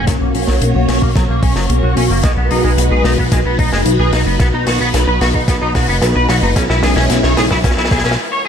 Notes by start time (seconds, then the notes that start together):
0.07 B1 F#3 A#3 C#4 F#4 C#5, kick, snare, closed hi-hat
0.21 B1 A#3
0.35 B1 C#4, open hi-hat
0.47 B1 F#3, snare
0.62 B1, closed hi-hat
0.75 B1 F#4
0.89 B1 C#4, snare, open hi-hat
1.02 B1 A#3, kick
1.16 B1 F#3, kick, snare, closed hi-hat
1.29 B1 A#3
1.43 B1 C#4, kick, open hi-hat
1.56 F#1 F#3, snare
1.70 B1, closed hi-hat
1.83 B1 F#4
1.97 B1 C#4, open hi-hat
2.10 F#1 A#3
2.23 B1 G#3 D#4 B4, kick, snare, closed hi-hat
2.37 B1 B3
2.51 B1 D#4, open hi-hat
2.64 B1 G#3
2.78 B1, closed hi-hat
2.91 B1 G#4
3.04 B1 D#4, snare, open hi-hat
3.18 B1 B3, kick
3.32 B1 G#3, kick, snare, closed hi-hat
3.45 B1 B3
3.59 B1 D#4, kick, open hi-hat
3.72 F#1 G#3, snare
3.86 B1, closed hi-hat
3.99 B1 G#4
4.13 B1 D#4, snare, open hi-hat
4.26 F#1 B3
4.39 B1 B3 B4, kick, snare, closed hi-hat
4.53 B1 D#4
4.67 B1 F#4, snare, open hi-hat
4.80 B1 B3
4.94 B1, snare, closed hi-hat
5.08 B1 B4
5.21 B1 F#4, snare, open hi-hat
5.34 B1 D#4, kick
5.48 B1 B3, kick, snare, closed hi-hat
5.61 B1 D#4
5.75 B1 F#4, kick, snare, open hi-hat
5.88 F#1 B3
6.02 B1, snare, closed hi-hat
6.16 B1 B4
6.29 B1 F#4, snare, open hi-hat
6.43 F#1 D#4
6.56 B1 G#3 C#4 E4, kick, snare, closed hi-hat
6.70 B1 E4, snare
6.83 B1 G#4, snare, open hi-hat
6.96 B1 C#4, snare
7.10 B1, snare, closed hi-hat
7.23 B1 C#5, snare
7.37 B1 G#4, snare, open hi-hat
7.51 B1 E4, kick, snare
7.64 B1 C#4, kick, snare, closed hi-hat
7.71 snare
7.77 B1 E4, snare
7.85 snare
7.91 B1 G#4, kick, snare, open hi-hat
7.98 snare
8.04 B1 C#4, snare
8.11 snare
8.32 C#5
8.45 high tom